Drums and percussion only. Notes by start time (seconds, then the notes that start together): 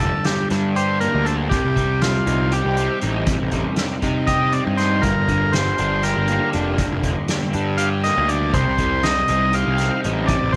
0.00 kick
0.24 snare, closed hi-hat
0.50 snare, closed hi-hat
0.76 closed hi-hat
1.01 closed hi-hat
1.26 closed hi-hat
1.51 kick, closed hi-hat
1.76 kick, closed hi-hat
2.02 snare, closed hi-hat
2.27 closed hi-hat
2.52 closed hi-hat
2.77 closed hi-hat
3.01 closed hi-hat
3.26 kick, closed hi-hat
3.51 kick, closed hi-hat
3.76 snare, closed hi-hat
4.02 kick, closed hi-hat
4.27 kick, closed hi-hat
4.52 closed hi-hat
4.78 snare, closed hi-hat
5.03 kick, closed hi-hat
5.28 kick, closed hi-hat
5.53 snare, closed hi-hat
5.78 closed hi-hat
6.03 snare, closed hi-hat
6.28 closed hi-hat
6.53 closed hi-hat
6.78 kick, closed hi-hat
7.03 kick, closed hi-hat
7.28 snare, closed hi-hat
7.53 closed hi-hat
7.78 closed hi-hat
8.04 snare, closed hi-hat
8.29 closed hi-hat
8.54 kick, closed hi-hat
8.78 kick, closed hi-hat
9.03 snare, closed hi-hat
9.28 closed hi-hat
9.53 closed hi-hat
9.78 snare, closed hi-hat
10.04 closed hi-hat
10.28 kick, closed hi-hat